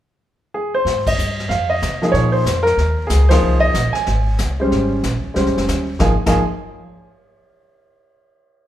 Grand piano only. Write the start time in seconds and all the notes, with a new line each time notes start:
0.54 G#4
0.74 C5
1.08 D#5
1.49 F5
1.70 D#5
2.02 F3 A#3 D#4 G#4
2.12 C#5
2.32 C5
2.63 A#4
3.07 G#4
3.29 F3 A#3 D#4 G#4 C5
3.60 D#5
3.93 G#5
4.60 G3 G#3 C#4 C5
5.34 G3 G#3 C#4 C5
5.99 F3 A#3 D#4 G#4 G#5
6.27 F3 A#3 D#4 G#4 G#5